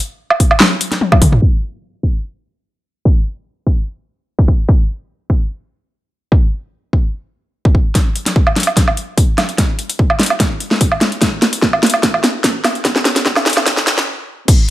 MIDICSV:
0, 0, Header, 1, 2, 480
1, 0, Start_track
1, 0, Tempo, 408163
1, 1670, Time_signature, 4, 2, 24, 8
1, 17290, End_track
2, 0, Start_track
2, 0, Title_t, "Drums"
2, 358, Note_on_c, 9, 77, 61
2, 471, Note_on_c, 9, 36, 54
2, 471, Note_on_c, 9, 46, 70
2, 475, Note_off_c, 9, 77, 0
2, 588, Note_off_c, 9, 36, 0
2, 588, Note_off_c, 9, 46, 0
2, 598, Note_on_c, 9, 77, 60
2, 711, Note_on_c, 9, 38, 114
2, 711, Note_on_c, 9, 39, 92
2, 716, Note_off_c, 9, 77, 0
2, 828, Note_off_c, 9, 38, 0
2, 828, Note_off_c, 9, 39, 0
2, 951, Note_on_c, 9, 42, 82
2, 1068, Note_off_c, 9, 42, 0
2, 1078, Note_on_c, 9, 38, 35
2, 1078, Note_on_c, 9, 42, 39
2, 1190, Note_on_c, 9, 48, 64
2, 1195, Note_off_c, 9, 38, 0
2, 1195, Note_off_c, 9, 42, 0
2, 1308, Note_off_c, 9, 48, 0
2, 1318, Note_on_c, 9, 36, 103
2, 1318, Note_on_c, 9, 48, 62
2, 1318, Note_on_c, 9, 77, 56
2, 1431, Note_off_c, 9, 36, 0
2, 1431, Note_on_c, 9, 36, 59
2, 1431, Note_on_c, 9, 46, 95
2, 1431, Note_on_c, 9, 47, 85
2, 1435, Note_off_c, 9, 48, 0
2, 1435, Note_off_c, 9, 77, 0
2, 1548, Note_off_c, 9, 36, 0
2, 1548, Note_off_c, 9, 46, 0
2, 1548, Note_off_c, 9, 47, 0
2, 1557, Note_on_c, 9, 45, 87
2, 1671, Note_on_c, 9, 36, 100
2, 1675, Note_off_c, 9, 45, 0
2, 1788, Note_off_c, 9, 36, 0
2, 2391, Note_on_c, 9, 36, 49
2, 2508, Note_off_c, 9, 36, 0
2, 3591, Note_on_c, 9, 36, 105
2, 3709, Note_off_c, 9, 36, 0
2, 4311, Note_on_c, 9, 36, 53
2, 4429, Note_off_c, 9, 36, 0
2, 5158, Note_on_c, 9, 36, 93
2, 5271, Note_off_c, 9, 36, 0
2, 5271, Note_on_c, 9, 36, 57
2, 5388, Note_off_c, 9, 36, 0
2, 5511, Note_on_c, 9, 36, 103
2, 5628, Note_off_c, 9, 36, 0
2, 6231, Note_on_c, 9, 36, 54
2, 6348, Note_off_c, 9, 36, 0
2, 7431, Note_on_c, 9, 36, 109
2, 7548, Note_off_c, 9, 36, 0
2, 8151, Note_on_c, 9, 36, 54
2, 8269, Note_off_c, 9, 36, 0
2, 8998, Note_on_c, 9, 36, 96
2, 9111, Note_off_c, 9, 36, 0
2, 9111, Note_on_c, 9, 36, 55
2, 9228, Note_off_c, 9, 36, 0
2, 9350, Note_on_c, 9, 38, 44
2, 9350, Note_on_c, 9, 42, 74
2, 9351, Note_on_c, 9, 36, 86
2, 9468, Note_off_c, 9, 36, 0
2, 9468, Note_off_c, 9, 38, 0
2, 9468, Note_off_c, 9, 42, 0
2, 9591, Note_on_c, 9, 42, 50
2, 9708, Note_off_c, 9, 42, 0
2, 9718, Note_on_c, 9, 38, 42
2, 9718, Note_on_c, 9, 42, 78
2, 9830, Note_on_c, 9, 36, 90
2, 9835, Note_off_c, 9, 38, 0
2, 9835, Note_off_c, 9, 42, 0
2, 9948, Note_off_c, 9, 36, 0
2, 9957, Note_on_c, 9, 77, 54
2, 10071, Note_on_c, 9, 38, 49
2, 10071, Note_on_c, 9, 42, 49
2, 10075, Note_off_c, 9, 77, 0
2, 10113, Note_off_c, 9, 42, 0
2, 10113, Note_on_c, 9, 42, 66
2, 10150, Note_off_c, 9, 42, 0
2, 10150, Note_on_c, 9, 42, 81
2, 10189, Note_off_c, 9, 38, 0
2, 10197, Note_on_c, 9, 77, 50
2, 10268, Note_off_c, 9, 42, 0
2, 10310, Note_on_c, 9, 36, 90
2, 10310, Note_on_c, 9, 38, 48
2, 10310, Note_on_c, 9, 42, 77
2, 10315, Note_off_c, 9, 77, 0
2, 10428, Note_off_c, 9, 36, 0
2, 10428, Note_off_c, 9, 38, 0
2, 10428, Note_off_c, 9, 42, 0
2, 10438, Note_on_c, 9, 77, 49
2, 10551, Note_on_c, 9, 42, 50
2, 10556, Note_off_c, 9, 77, 0
2, 10669, Note_off_c, 9, 42, 0
2, 10790, Note_on_c, 9, 36, 91
2, 10790, Note_on_c, 9, 42, 75
2, 10908, Note_off_c, 9, 36, 0
2, 10908, Note_off_c, 9, 42, 0
2, 11030, Note_on_c, 9, 38, 53
2, 11030, Note_on_c, 9, 42, 48
2, 11030, Note_on_c, 9, 77, 52
2, 11148, Note_off_c, 9, 38, 0
2, 11148, Note_off_c, 9, 42, 0
2, 11148, Note_off_c, 9, 77, 0
2, 11158, Note_on_c, 9, 42, 36
2, 11270, Note_off_c, 9, 42, 0
2, 11270, Note_on_c, 9, 36, 85
2, 11270, Note_on_c, 9, 38, 55
2, 11270, Note_on_c, 9, 42, 73
2, 11388, Note_off_c, 9, 36, 0
2, 11388, Note_off_c, 9, 38, 0
2, 11388, Note_off_c, 9, 42, 0
2, 11509, Note_on_c, 9, 42, 52
2, 11627, Note_off_c, 9, 42, 0
2, 11637, Note_on_c, 9, 42, 78
2, 11750, Note_on_c, 9, 36, 91
2, 11754, Note_off_c, 9, 42, 0
2, 11868, Note_off_c, 9, 36, 0
2, 11877, Note_on_c, 9, 77, 57
2, 11990, Note_on_c, 9, 38, 64
2, 11990, Note_on_c, 9, 42, 47
2, 11995, Note_off_c, 9, 77, 0
2, 12032, Note_off_c, 9, 42, 0
2, 12032, Note_on_c, 9, 42, 66
2, 12069, Note_off_c, 9, 42, 0
2, 12069, Note_on_c, 9, 42, 79
2, 12107, Note_off_c, 9, 38, 0
2, 12117, Note_on_c, 9, 77, 52
2, 12187, Note_off_c, 9, 42, 0
2, 12230, Note_on_c, 9, 36, 94
2, 12230, Note_on_c, 9, 38, 61
2, 12230, Note_on_c, 9, 42, 75
2, 12234, Note_off_c, 9, 77, 0
2, 12348, Note_off_c, 9, 36, 0
2, 12348, Note_off_c, 9, 38, 0
2, 12348, Note_off_c, 9, 42, 0
2, 12470, Note_on_c, 9, 42, 50
2, 12588, Note_off_c, 9, 42, 0
2, 12597, Note_on_c, 9, 38, 59
2, 12710, Note_on_c, 9, 36, 91
2, 12710, Note_on_c, 9, 42, 80
2, 12715, Note_off_c, 9, 38, 0
2, 12828, Note_off_c, 9, 36, 0
2, 12828, Note_off_c, 9, 42, 0
2, 12837, Note_on_c, 9, 77, 47
2, 12950, Note_on_c, 9, 38, 70
2, 12950, Note_on_c, 9, 42, 49
2, 12955, Note_off_c, 9, 77, 0
2, 13068, Note_off_c, 9, 38, 0
2, 13068, Note_off_c, 9, 42, 0
2, 13077, Note_on_c, 9, 42, 36
2, 13190, Note_off_c, 9, 42, 0
2, 13190, Note_on_c, 9, 36, 91
2, 13190, Note_on_c, 9, 38, 70
2, 13190, Note_on_c, 9, 42, 75
2, 13308, Note_off_c, 9, 36, 0
2, 13308, Note_off_c, 9, 38, 0
2, 13308, Note_off_c, 9, 42, 0
2, 13430, Note_on_c, 9, 38, 76
2, 13430, Note_on_c, 9, 42, 52
2, 13548, Note_off_c, 9, 38, 0
2, 13548, Note_off_c, 9, 42, 0
2, 13557, Note_on_c, 9, 42, 78
2, 13670, Note_on_c, 9, 36, 88
2, 13670, Note_on_c, 9, 38, 77
2, 13675, Note_off_c, 9, 42, 0
2, 13787, Note_off_c, 9, 38, 0
2, 13788, Note_off_c, 9, 36, 0
2, 13797, Note_on_c, 9, 77, 59
2, 13910, Note_on_c, 9, 38, 84
2, 13910, Note_on_c, 9, 42, 46
2, 13914, Note_off_c, 9, 77, 0
2, 13952, Note_off_c, 9, 42, 0
2, 13952, Note_on_c, 9, 42, 62
2, 13990, Note_off_c, 9, 42, 0
2, 13990, Note_on_c, 9, 42, 80
2, 14028, Note_off_c, 9, 38, 0
2, 14037, Note_on_c, 9, 77, 58
2, 14108, Note_off_c, 9, 42, 0
2, 14150, Note_on_c, 9, 36, 96
2, 14150, Note_on_c, 9, 38, 81
2, 14150, Note_on_c, 9, 42, 76
2, 14155, Note_off_c, 9, 77, 0
2, 14268, Note_off_c, 9, 36, 0
2, 14268, Note_off_c, 9, 38, 0
2, 14268, Note_off_c, 9, 42, 0
2, 14277, Note_on_c, 9, 77, 53
2, 14390, Note_on_c, 9, 38, 81
2, 14390, Note_on_c, 9, 42, 50
2, 14395, Note_off_c, 9, 77, 0
2, 14508, Note_off_c, 9, 38, 0
2, 14508, Note_off_c, 9, 42, 0
2, 14630, Note_on_c, 9, 36, 95
2, 14630, Note_on_c, 9, 38, 89
2, 14630, Note_on_c, 9, 42, 77
2, 14748, Note_off_c, 9, 36, 0
2, 14748, Note_off_c, 9, 38, 0
2, 14748, Note_off_c, 9, 42, 0
2, 14871, Note_on_c, 9, 38, 81
2, 14871, Note_on_c, 9, 42, 50
2, 14871, Note_on_c, 9, 77, 58
2, 14988, Note_off_c, 9, 38, 0
2, 14988, Note_off_c, 9, 42, 0
2, 14988, Note_off_c, 9, 77, 0
2, 14997, Note_on_c, 9, 42, 36
2, 15109, Note_off_c, 9, 42, 0
2, 15109, Note_on_c, 9, 38, 88
2, 15109, Note_on_c, 9, 42, 70
2, 15110, Note_on_c, 9, 36, 93
2, 15227, Note_off_c, 9, 38, 0
2, 15227, Note_off_c, 9, 42, 0
2, 15228, Note_off_c, 9, 36, 0
2, 15237, Note_on_c, 9, 38, 82
2, 15350, Note_off_c, 9, 38, 0
2, 15350, Note_on_c, 9, 38, 93
2, 15350, Note_on_c, 9, 42, 49
2, 15467, Note_off_c, 9, 38, 0
2, 15467, Note_off_c, 9, 42, 0
2, 15477, Note_on_c, 9, 38, 80
2, 15477, Note_on_c, 9, 42, 77
2, 15589, Note_off_c, 9, 38, 0
2, 15589, Note_on_c, 9, 38, 97
2, 15590, Note_on_c, 9, 36, 92
2, 15594, Note_off_c, 9, 42, 0
2, 15706, Note_off_c, 9, 38, 0
2, 15708, Note_off_c, 9, 36, 0
2, 15716, Note_on_c, 9, 38, 84
2, 15716, Note_on_c, 9, 77, 63
2, 15830, Note_off_c, 9, 38, 0
2, 15830, Note_on_c, 9, 38, 106
2, 15830, Note_on_c, 9, 42, 49
2, 15834, Note_off_c, 9, 77, 0
2, 15872, Note_off_c, 9, 42, 0
2, 15872, Note_on_c, 9, 42, 64
2, 15910, Note_off_c, 9, 42, 0
2, 15910, Note_on_c, 9, 42, 77
2, 15948, Note_off_c, 9, 38, 0
2, 15957, Note_on_c, 9, 38, 84
2, 15957, Note_on_c, 9, 77, 60
2, 16028, Note_off_c, 9, 42, 0
2, 16070, Note_off_c, 9, 38, 0
2, 16070, Note_on_c, 9, 36, 101
2, 16070, Note_on_c, 9, 38, 102
2, 16070, Note_on_c, 9, 42, 74
2, 16075, Note_off_c, 9, 77, 0
2, 16188, Note_off_c, 9, 36, 0
2, 16188, Note_off_c, 9, 38, 0
2, 16188, Note_off_c, 9, 42, 0
2, 16197, Note_on_c, 9, 38, 94
2, 16310, Note_off_c, 9, 38, 0
2, 16310, Note_on_c, 9, 38, 105
2, 16310, Note_on_c, 9, 42, 49
2, 16428, Note_off_c, 9, 38, 0
2, 16428, Note_off_c, 9, 42, 0
2, 16437, Note_on_c, 9, 38, 97
2, 16555, Note_off_c, 9, 38, 0
2, 17030, Note_on_c, 9, 42, 81
2, 17030, Note_on_c, 9, 49, 106
2, 17031, Note_on_c, 9, 36, 115
2, 17148, Note_off_c, 9, 42, 0
2, 17148, Note_off_c, 9, 49, 0
2, 17149, Note_off_c, 9, 36, 0
2, 17290, End_track
0, 0, End_of_file